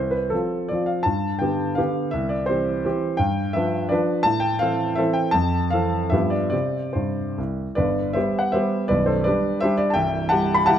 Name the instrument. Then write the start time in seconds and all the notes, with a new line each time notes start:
grand piano
Already playing: C2 C5
0.11 B4
0.30 F3 C4 F4 A4
0.69 F3 C4 F4 D5
0.86 F5
1.03 G2 A5
1.39 D3 B3 G4 G5
1.75 D3 B3 G4 F5
2.11 C2 E5
2.29 D5
2.46 E3 C4 G4 C5
2.85 E3 C4 G4
3.17 G2 G5
3.53 F3 D4 B4 E5
3.89 F3 D4 B4 D5
4.23 A2 A5
4.40 G5
4.59 E3 C4 A4 F5
4.95 E3 C4 A4 E5
5.13 G5
5.31 F2 A5
5.70 E3 C4 A4 F5
6.10 G2 F3 B3 G4 E5
6.30 D5
6.50 C3 C4 G4 D5
6.93 G2 C5
7.38 C2
7.75 G1 G2 B4 D5
8.13 G3 B3 G4 C5 E5
8.39 F#5
8.52 G3 B3 G4 C5 E5
8.88 B0 B1 B4 D5
9.06 A4 C5
9.24 G3 D4 G4 B4 D5
9.61 G3 D4 G4 C5 E5
9.78 D5
9.90 G5 A5
9.95 C1 C2 E5
10.29 G3 E4 G4 F#5 A5
10.54 B5
10.66 G3 E4 G4 F#5 A5